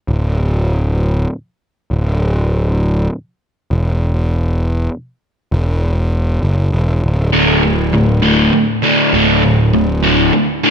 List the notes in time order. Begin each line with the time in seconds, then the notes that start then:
0.08 D1
1.91 D1
3.71 E1
5.52 E1
6.43 F#1
6.72 E1
7.04 D1
7.33 D2 A2 D3
7.63 D2 A2
7.93 D2 A2
8.22 D2 A2 D3
8.53 D2 A2
8.82 D2 A2 D3
9.13 D1 D2 A2 D3
9.43 D2 A2
9.74 D2 A2
10.03 D2 A2 D3
10.33 D2 A2
10.64 D2 A2 D3